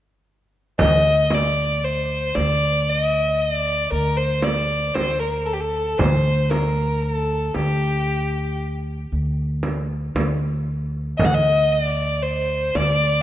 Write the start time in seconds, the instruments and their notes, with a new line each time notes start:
0.79 upright bass D2, violin D#5, frame drum
1.30 violin D5, frame drum
1.85 violin C5
2.35 upright bass D2, violin D5, frame drum
2.89 violin D5
3.01 violin D#5
3.41 violin D#5
3.53 violin D5
3.92 upright bass D2, violin A#4
4.17 violin C5
4.42 violin D5, frame drum
4.94 upright bass D2, violin C5, frame drum
5.19 violin A#4
5.46 violin A4
5.53 violin G4
5.61 violin A4
5.98 upright bass D2, violin C5, frame drum
6.50 violin A#4, frame drum
7.02 violin A#4
7.13 violin A4
7.54 upright bass D2, violin G4, frame drum
9.12 upright bass D2
9.63 frame drum
10.15 upright bass D2, frame drum
11.18 upright bass D2, violin D#5, frame drum
11.25 violin F#5
11.34 violin D#5
11.71 violin D#5
11.83 violin D5
12.22 violin C5
12.75 upright bass D2, violin D5, frame drum